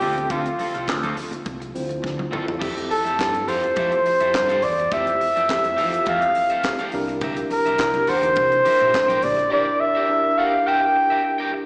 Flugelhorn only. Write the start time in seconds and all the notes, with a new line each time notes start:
Already playing: G4
0.31 F4
2.91 A4
3.48 C5
4.63 D5
4.93 E5
6.08 F5
7.52 A#4
8.09 C5
9.24 D5
9.52 D5
9.80 E5
10.38 F5
10.67 G5